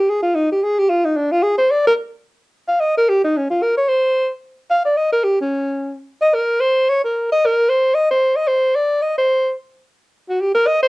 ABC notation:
X:1
M:4/4
L:1/8
Q:"Swing" 1/4=221
K:Ebmix
V:1 name="Alto saxophone"
A F E G A G F E | =D F A c =d B z2 | z3 f e B G E | D F B d c3 z |
z2 f =d e B G _D- | D4 z e B2 | c2 d B2 e B2 | c2 e c2 e c2 |
=d2 e c3 z2 | z3 _G =G B e c |]